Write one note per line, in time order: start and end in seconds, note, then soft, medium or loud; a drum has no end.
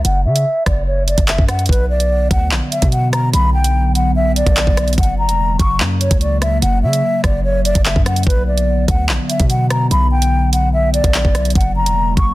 0.05 0.27 F#1 loud
0.05 0.21 F#5 medium
0.05 closed hi-hat medium
0.25 0.45 C#3 loud
0.25 0.64 E5 medium
0.36 closed hi-hat medium
0.66 1.16 F#1 loud
0.66 0.83 D5 medium
0.66 kick loud
0.66 cross-stick loud
0.66 closed hi-hat medium
0.87 1.03 C#5 medium
1.08 1.24 D5 medium
1.08 closed hi-hat medium
1.18 1.37 F#1 loud
1.18 kick loud
1.18 closed hi-hat medium
1.28 1.44 E5 medium
1.28 clap loud
1.28 closed hi-hat medium
1.38 1.68 F#2 loud
1.38 kick medium
1.49 1.65 F#5 medium
1.49 cross-stick loud
1.49 closed hi-hat medium
1.59 closed hi-hat medium
1.66 2.28 B1 loud
1.66 4.95 D3 medium
1.66 11.51 F#3 medium
1.66 4.95 B3 medium
1.66 1.85 B4 medium
1.66 kick loud
1.66 closed hi-hat medium
1.73 closed hi-hat medium
1.90 2.28 D5 medium
2.00 closed hi-hat medium
2.31 2.53 D2 loud
2.31 2.47 F#5 medium
2.31 kick loud
2.31 closed hi-hat medium
2.51 2.61 A#1 loud
2.51 clap loud
2.71 2.88 E5 medium
2.71 closed hi-hat medium
2.82 3.31 B2 loud
2.82 kick loud
2.82 closed hi-hat medium
2.92 3.09 F#5 medium
2.92 closed hi-hat medium
3.13 3.29 A#5 medium
3.13 cross-stick loud
3.13 closed hi-hat medium
3.33 4.42 B1 loud
3.33 3.50 B5 loud
3.33 closed hi-hat medium
3.54 3.93 G5 medium
3.64 closed hi-hat medium
3.95 4.12 F#5 medium
3.95 closed hi-hat medium
4.16 4.32 E5 medium
4.36 4.94 D5 medium
4.36 closed hi-hat medium
4.46 4.66 A#1 loud
4.46 kick loud
4.46 closed hi-hat medium
4.57 clap loud
4.57 closed hi-hat medium
4.67 4.97 B1 loud
4.67 kick medium
4.77 cross-stick loud
4.77 closed hi-hat medium
4.88 closed hi-hat medium
4.93 closed hi-hat medium
4.98 5.30 F#1 loud
4.98 8.23 C#3 medium
4.98 8.23 A#3 medium
4.98 5.14 F#5 medium
4.98 kick loud
4.98 closed hi-hat medium
5.03 closed hi-hat medium
5.19 5.57 A#5 medium
5.29 5.58 E1 loud
5.29 closed hi-hat medium
5.59 5.82 F#1 loud
5.59 5.76 C#6 medium
5.59 kick loud
5.59 closed hi-hat medium
5.80 6.09 F#2 loud
5.80 clap loud
6.01 6.17 C#5 medium
6.01 closed hi-hat medium
6.11 6.60 C#2 loud
6.11 kick loud
6.11 closed hi-hat medium
6.21 6.38 D5 medium
6.21 closed hi-hat medium
6.42 6.58 E5 medium
6.42 cross-stick medium
6.42 closed hi-hat medium
6.62 6.84 F#1 loud
6.62 6.79 F#5 medium
6.62 closed hi-hat medium
6.83 7.02 C#3 medium
6.83 7.22 E5 medium
6.93 closed hi-hat medium
7.24 7.73 F#1 loud
7.24 7.40 D5 medium
7.24 kick loud
7.24 cross-stick loud
7.24 closed hi-hat medium
7.44 7.61 C#5 medium
7.65 7.81 D5 medium
7.65 closed hi-hat medium
7.75 7.95 F#1 loud
7.75 kick loud
7.75 closed hi-hat medium
7.85 8.02 E5 medium
7.85 clap loud
7.85 closed hi-hat medium
7.96 8.25 F#2 loud
7.96 kick medium
8.06 8.23 F#5 medium
8.06 cross-stick medium
8.06 closed hi-hat medium
8.16 closed hi-hat medium
8.23 8.86 B1 loud
8.23 11.52 D3 medium
8.23 11.52 B3 medium
8.23 8.43 B4 medium
8.23 kick loud
8.23 closed hi-hat medium
8.30 closed hi-hat medium
8.47 8.86 D5 medium
8.58 closed hi-hat medium
8.88 9.10 D2 loud
8.88 9.05 F#5 medium
8.88 kick loud
8.88 closed hi-hat medium
9.09 9.19 A#1 loud
9.09 clap loud
9.29 9.46 E5 medium
9.29 closed hi-hat medium
9.40 9.89 B2 loud
9.40 kick loud
9.40 closed hi-hat medium
9.50 9.66 F#5 medium
9.50 closed hi-hat medium
9.70 9.87 A#5 medium
9.70 cross-stick loud
9.70 closed hi-hat medium
9.91 11.00 B1 loud
9.91 10.07 B5 loud
9.91 closed hi-hat medium
10.11 10.50 G5 medium
10.22 closed hi-hat medium
10.53 10.69 F#5 medium
10.53 closed hi-hat medium
10.74 10.90 E5 medium
10.94 11.52 D5 medium
10.94 closed hi-hat medium
11.04 11.24 A#1 loud
11.04 kick loud
11.04 closed hi-hat medium
11.14 clap loud
11.14 closed hi-hat medium
11.25 11.54 B1 loud
11.25 kick medium
11.35 cross-stick medium
11.35 closed hi-hat medium
11.45 closed hi-hat medium
11.50 closed hi-hat medium
11.55 11.88 F#1 loud
11.55 12.34 C#3 medium
11.55 12.34 F#3 medium
11.55 12.34 A#3 medium
11.55 11.72 F#5 medium
11.55 kick loud
11.55 closed hi-hat medium
11.61 closed hi-hat medium
11.76 12.15 A#5 medium
11.86 12.16 E1 loud
11.86 closed hi-hat medium
12.17 12.34 F#1 loud
12.17 12.34 C#6 medium
12.17 kick loud
12.17 closed hi-hat medium